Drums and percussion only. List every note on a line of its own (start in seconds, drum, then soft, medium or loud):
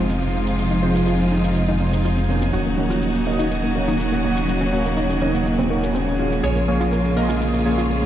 0.10 shaker medium
0.22 shaker soft
0.47 shaker medium
0.58 shaker medium
0.71 shaker soft
0.95 shaker medium
1.07 shaker medium
1.20 shaker soft
1.44 shaker medium
1.56 shaker medium
1.69 shaker soft
1.93 shaker medium
2.05 shaker soft
2.18 shaker soft
2.42 shaker medium
2.54 shaker soft
2.66 shaker soft
2.91 shaker medium
3.02 shaker soft
3.15 shaker soft
3.39 shaker medium
3.51 shaker medium
3.64 shaker soft
3.88 shaker medium
4.00 shaker soft
4.13 shaker soft
4.37 shaker medium
4.49 shaker soft
4.61 shaker soft
4.86 shaker medium
4.97 shaker soft
5.10 shaker soft
5.34 shaker medium
5.46 shaker soft
5.59 shaker soft
5.83 shaker medium
5.95 shaker soft
6.08 shaker soft
6.32 shaker medium
6.44 shaker soft
6.57 shaker soft
6.81 shaker medium
6.93 shaker soft
7.05 shaker soft
7.30 shaker medium
7.41 shaker medium
7.54 shaker soft
7.78 shaker medium
7.90 shaker soft
8.03 shaker soft